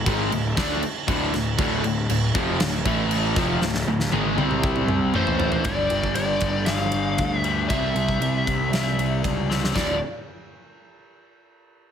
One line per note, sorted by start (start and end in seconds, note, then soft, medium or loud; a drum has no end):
0.06 0.30 G#1 loud
0.06 0.31 G#2 medium
0.06 0.31 D#3 medium
0.06 0.32 G#3 medium
0.06 kick loud
0.06 crash medium
0.31 0.56 D1 medium
0.31 0.52 D2 medium
0.31 0.52 A2 medium
0.31 crash medium
0.57 0.81 D2 medium
0.57 0.82 D3 medium
0.57 0.82 A3 loud
0.57 0.82 D4 loud
0.57 kick loud
0.57 snare loud
0.57 crash medium
0.83 muted distorted electric guitar stroke medium
0.83 muted picked electric bass stroke soft
0.83 muted overdriven electric guitar stroke medium
0.83 crash medium
1.07 1.32 D1 medium
1.07 1.32 D2 medium
1.07 1.32 A2 loud
1.07 1.33 D3 loud
1.07 kick loud
1.07 crash medium
1.33 1.58 D1 medium
1.33 1.54 D2 medium
1.33 1.54 A2 medium
1.33 snare soft
1.33 crash medium
1.58 1.82 D1 loud
1.58 1.83 D2 loud
1.58 1.83 A2 medium
1.58 1.84 D3 medium
1.58 kick loud
1.58 crash medium
1.84 2.08 D1 medium
1.84 2.05 D2 medium
1.84 2.05 A2 medium
1.84 crash medium
2.09 2.33 D1 medium
2.09 2.30 D2 medium
2.09 2.30 A2 medium
2.09 crash medium
2.34 2.59 F1 medium
2.34 2.60 F2 loud
2.34 2.60 C3 medium
2.34 2.60 F3 loud
2.34 kick loud
2.34 crash medium
2.60 2.84 D1 medium
2.60 2.81 D2 medium
2.60 2.81 A2 medium
2.60 snare loud
2.60 crash medium
2.85 3.33 A1 loud
2.85 3.36 A2 loud
2.85 3.36 E3 loud
2.85 3.36 A3 loud
2.85 kick loud
2.85 crash medium
3.11 crash medium
3.36 3.60 F1 loud
3.36 3.61 F2 loud
3.36 3.62 C3 medium
3.36 3.62 F3 medium
3.36 kick loud
3.36 snare soft
3.36 crash medium
3.62 3.86 D1 medium
3.62 3.82 D2 medium
3.62 3.83 A2 medium
3.62 snare medium
3.74 snare medium
3.87 4.11 D1 medium
3.87 4.08 D2 medium
3.87 4.08 A2 medium
4.00 snare medium
4.12 4.36 G#1 loud
4.12 4.37 G#2 medium
4.12 4.37 D#3 medium
4.12 4.38 G#3 medium
4.12 high tom medium
4.37 5.10 C2 medium
4.37 5.13 C3 medium
4.37 5.14 G3 medium
4.37 5.14 C4 loud
4.37 high tom medium
4.51 mid tom medium
4.63 kick loud
4.76 mid tom medium
4.88 mid tom medium
5.14 5.62 A1 medium
5.14 5.64 A2 medium
5.14 5.65 E3 medium
5.14 5.65 A3 medium
5.14 5.68 C5 medium
5.14 mid tom medium
5.27 floor tom medium
5.40 floor tom loud
5.52 floor tom loud
5.64 5.89 G1 medium
5.64 7.43 G2 medium
5.64 7.43 D3 medium
5.64 7.43 G3 medium
5.64 6.14 D5 medium
5.64 kick loud
5.64 ride medium
5.90 6.15 G1 medium
5.90 ride medium
6.04 kick medium
6.15 6.40 G1 medium
6.15 6.66 D5 medium
6.15 ride medium
6.41 6.65 G1 medium
6.41 kick medium
6.41 ride medium
6.66 6.91 G1 medium
6.66 7.37 F5 loud
6.66 snare medium
6.66 ride medium
6.92 7.16 G1 medium
6.92 ride medium
7.18 7.66 D2 medium
7.18 kick medium
7.18 ride medium
7.37 7.69 E5 loud
7.44 7.69 G2 medium
7.44 7.69 D3 medium
7.44 7.69 G3 medium
7.44 ride medium
7.69 7.94 C2 medium
7.69 9.48 C3 medium
7.69 9.49 G3 medium
7.69 9.48 C4 medium
7.69 9.20 E5 medium
7.69 kick loud
7.69 ride medium
7.95 8.19 C2 medium
7.95 ride soft
8.09 kick medium
8.21 8.45 C2 medium
8.21 ride medium
8.47 8.71 C2 medium
8.47 kick medium
8.47 ride medium
8.72 8.96 C2 medium
8.72 snare medium
8.72 ride medium
8.98 9.22 C2 medium
8.98 ride medium
9.24 9.72 C#2 medium
9.24 kick medium
9.24 ride medium
9.50 9.75 C3 medium
9.50 9.75 G3 medium
9.50 9.74 C4 medium
9.50 snare medium
9.64 snare medium
9.75 10.00 D1 medium
9.75 9.96 D2 medium
9.75 9.96 A2 medium
9.75 9.97 D3 medium
9.75 9.99 D5 medium
9.75 kick medium
9.75 snare medium
9.75 crash medium